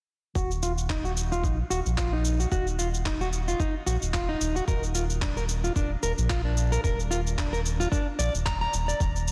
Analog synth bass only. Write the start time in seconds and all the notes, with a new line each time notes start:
0.35 D#1
1.44 A#1
1.71 D#1
1.86 A#1
2.52 D#1
3.87 A#1
4.02 D#1
4.41 D#1
4.68 D#1
5.76 D#1
6.03 D#1
6.18 A#1
6.84 D#1
8.19 A#1
8.34 D#1
8.73 D#1
9.00 D#1